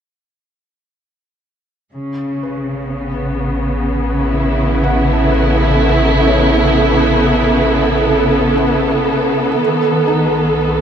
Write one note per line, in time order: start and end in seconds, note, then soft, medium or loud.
1.94 9.55 A1 medium
1.94 9.59 C#3 medium
2.43 5.30 B4 soft
2.84 10.81 B3 medium
4.14 9.59 E4 medium
4.84 8.05 F#5 medium
5.13 8.32 A5 soft
5.20 10.81 A4 medium
5.32 8.53 B4 medium
6.27 9.47 C#5 medium
8.18 10.03 A4 medium
9.59 10.81 B1 medium
9.59 10.81 D#3 medium
10.07 10.81 D#4 soft